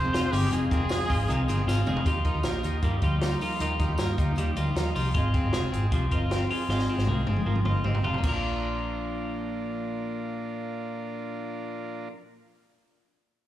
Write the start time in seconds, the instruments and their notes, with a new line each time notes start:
Already playing: fingered electric bass F1, clean electric guitar F2 D#3 G#3 C4 F4, trumpet C5
0.04 steel-string acoustic guitar F2 C3 D#3 G#3 C4 G#4
0.13 transistor combo organ C4 D#4 F4 G#4, clean electric guitar F4, snare, hi-hat pedal, open hi-hat, tambourine
0.22 steel-string acoustic guitar D#3 G#3 C4 G#4
0.32 fingered electric bass G1, clean electric guitar G#3, transistor combo organ C4 D#4 F4 G#4, trumpet G4, hi-hat pedal, open hi-hat, tambourine
0.51 fingered electric bass F1, clean electric guitar F2, steel-string acoustic guitar D#3 G#3 C4 G#4, transistor combo organ C4 D#4 F4 G#4, trumpet G#4, hi-hat pedal, open hi-hat, tambourine
0.70 fingered electric bass F1, transistor combo organ C4 D#4 F4 A#4, clean electric guitar C4, kick, hi-hat pedal, open hi-hat, tambourine
0.80 steel-string acoustic guitar D#3 G#3 C4 G#4
0.89 clean electric guitar G#3, transistor combo organ C4 D#4 F4 G#4, snare, hi-hat pedal, open hi-hat, tambourine
0.99 steel-string acoustic guitar D#3 G#3 C4 G#4
1.08 fingered electric bass G#1, transistor combo organ C4 D#4 F4 G#4, clean electric guitar F4, kick, hi-hat pedal, open hi-hat, tambourine
1.27 fingered electric bass C2, steel-string acoustic guitar D#3 G#3 C4 G#4, clean electric guitar D#3, transistor combo organ C4 D#4 F4 A#4, hi-hat pedal, open hi-hat, tambourine
1.48 fingered electric bass G1, transistor combo organ C4 D#4 F4 G#4, clean electric guitar C4, hi-hat pedal, open hi-hat, tambourine
1.57 steel-string acoustic guitar F2 C3 D#3 G#3 C4 G#4
1.66 fingered electric bass G#1, transistor combo organ C4 D#4 F4 G#4, clean electric guitar F4, snare, tambourine
1.75 steel-string acoustic guitar D#3 G#3 C4 G#4
1.86 fingered electric bass F1, clean electric guitar G#3, transistor combo organ C4 D#4 F4 G#4, mid tom, tambourine
1.97 floor tom
2.05 fingered electric bass D#2, steel-string acoustic guitar D#3 F3 A#3 D#4 G4, transistor combo organ D#4 F4 G4, clean electric guitar F4, kick, closed hi-hat, tambourine
2.24 transistor combo organ D#4 F4 A#4, clean electric guitar D#4, kick, closed hi-hat
2.34 fingered electric bass D#2, steel-string acoustic guitar A#3 D#4 G4
2.43 fingered electric bass A#1, clean electric guitar A#3, transistor combo organ D#4 F4 G4, snare, closed hi-hat, tambourine
2.63 fingered electric bass D#2, transistor combo organ D#4 F4 G4, clean electric guitar D#4, closed hi-hat, tambourine
2.81 fingered electric bass G2, clean electric guitar G3, transistor combo organ D#4 F4 A#4, kick, closed hi-hat, tambourine
3.02 fingered electric bass D2, steel-string acoustic guitar F3 A#3 D#4 G4, transistor combo organ D#4 F4 G4, clean electric guitar F4, kick, closed hi-hat, tambourine
3.21 steel-string acoustic guitar F3 A#3 D#4, transistor combo organ D#4 F4 G4, clean electric guitar D#4, snare, closed hi-hat, tambourine
3.25 steel-string acoustic guitar G4
3.40 steel-string acoustic guitar F3 A#3 D#4 G4, transistor combo organ D#4 F4 A#4, clean electric guitar F4, open hi-hat, tambourine
3.60 fingered electric bass D#2, steel-string acoustic guitar D#3 F3 A#3 D#4 G4, clean electric guitar D#3 F4, transistor combo organ D#4 F4 A#4, closed hi-hat, tambourine
3.79 transistor combo organ D#4 F4 G4, clean electric guitar D#4, kick, closed hi-hat, tambourine
3.88 fingered electric bass D#2, steel-string acoustic guitar A#3 D#4 G4
3.98 fingered electric bass G2, clean electric guitar A#3, transistor combo organ D#4 F4 G4, snare, closed hi-hat, tambourine
4.18 fingered electric bass D2, transistor combo organ D#4 F4 G4, clean electric guitar D#4, kick, closed hi-hat, tambourine
4.36 fingered electric bass D#2, clean electric guitar G3, transistor combo organ D#4 F4 G4, closed hi-hat, tambourine
4.56 fingered electric bass D2, steel-string acoustic guitar F3 A#3 D#4 G4, transistor combo organ D#4 F4 A#4, clean electric guitar F4, closed hi-hat, tambourine
4.75 fingered electric bass D#2, steel-string acoustic guitar F3 A#3 D#4 G4, clean electric guitar D#4, transistor combo organ D#4 F4 A#4, snare, closed hi-hat, tambourine
4.95 fingered electric bass C2, steel-string acoustic guitar F3 A#3 D#4 G4, transistor combo organ D#4 F4 G4, clean electric guitar F4, open hi-hat, tambourine
5.14 fingered electric bass G#1, steel-string acoustic guitar G#3 C4 F4 C5 D#5, transistor combo organ C4 F4 G#4, clean electric guitar F4, kick, closed hi-hat
5.34 transistor combo organ C4 F4 G#4, clean electric guitar C4, kick, closed hi-hat
5.44 fingered electric bass G#1, steel-string acoustic guitar F4 C5 D#5
5.53 fingered electric bass F1, clean electric guitar G#3, transistor combo organ C4 F4 G#4, snare, closed hi-hat
5.72 fingered electric bass G#1, transistor combo organ C4 F4 G#4, clean electric guitar C4, closed hi-hat
5.92 fingered electric bass C2, clean electric guitar F3, transistor combo organ C4 F4 G4, kick, closed hi-hat
6.11 fingered electric bass G1, transistor combo organ C4 F4 A#4, steel-string acoustic guitar C4 F4 C5 D#5, clean electric guitar F4, kick, closed hi-hat
6.30 steel-string acoustic guitar C4 F4 C5 D#5, transistor combo organ C4 F4 A#4, clean electric guitar C4, snare, closed hi-hat
6.49 steel-string acoustic guitar C4 F4 C5 D#5, transistor combo organ C4 F4 G#4, clean electric guitar F4, open hi-hat
6.68 fingered electric bass G#1, clean electric guitar G#2 F4, steel-string acoustic guitar G#3 C4 F4 C5 D#5, transistor combo organ C4 F4 G#4, snare
6.79 snare
6.89 transistor combo organ C4 F4 G#4, clean electric guitar C4
6.97 fingered electric bass G#1, steel-string acoustic guitar F4 C5 D#5, snare
7.07 fingered electric bass C2, clean electric guitar G#3, transistor combo organ C4 F4 A#4, high tom
7.27 fingered electric bass G1, clean electric guitar C4, transistor combo organ C4 F4 G#4, high tom
7.36 mid tom
7.46 fingered electric bass G#1, clean electric guitar F3, transistor combo organ C4 F4 A#4
7.55 mid tom
7.65 fingered electric bass G1, transistor combo organ C4 F4 A#4, steel-string acoustic guitar C4 F4 C5 D#5, clean electric guitar F4, mid tom
7.84 fingered electric bass G#1, steel-string acoustic guitar C4 F4 C5 D#5, transistor combo organ C4 F4 G4, clean electric guitar C4, mid tom
7.95 floor tom
8.03 fingered electric bass F1, transistor combo organ C4 F4 G4, steel-string acoustic guitar C4 F4 C5, clean electric guitar F4, floor tom
8.07 steel-string acoustic guitar D#5
8.14 floor tom
8.18 clean electric guitar A#2, steel-string acoustic guitar A#3
8.23 fingered electric bass A#1, clean electric guitar F3, transistor combo organ D4 F4 A#4, steel-string acoustic guitar D4, kick, crash
8.28 clean electric guitar A#3, steel-string acoustic guitar F4
8.33 clean electric guitar D4, steel-string acoustic guitar A#4 D5
8.37 clean electric guitar F4